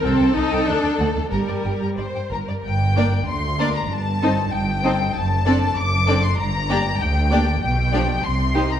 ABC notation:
X:1
M:2/4
L:1/16
Q:1/4=96
K:Gm
V:1 name="Violin section"
g c e g A d ^f A | b d g b d g b d | g4 c'3 b | a4 g4 |
a4 d'3 c' | b4 g4 | g4 c'3 b |]
V:2 name="Violin section"
A8 | B4 c2 B2 | z2 [Bd] z3 [Bd] z | z2 [Ac] z3 [Ac] z |
z2 [Ad] z3 [Ad] z | z2 [Gd] z3 [Gd] z | z2 [Gd] z3 [Gc] z |]
V:3 name="Viola section"
C2 E2 D2 A,2 | G,4 z4 | z2 [B,D] z3 [B,D] z | z2 [CE] z3 [CE] z |
z2 [CD] z3 [CD] z | z2 [B,D] z3 [B,D] z | z2 [F,D] z3 [E,E] z |]
V:4 name="Cello section" clef=bass
C,, C,, C,, C,, D,, D,, D,, D,, | G,, G,, G,, G,, G,, G,, G,, G,, | G,,3 z D,,3 z | G,,3 z G,,3 z |
^F,,3 z F,,3 z | G,,3 z D,,3 z | =B,,3 z C,3 z |]
V:5 name="Double bass section" clef=bass
C,, z C,, z D,, z D,, z | G,,, z G,,, z G,,, z G,,, z | G,,,4 D,,4 | G,,,4 G,,,4 |
^F,,,4 F,,,4 | G,,,4 D,,4 | =B,,,4 C,,4 |]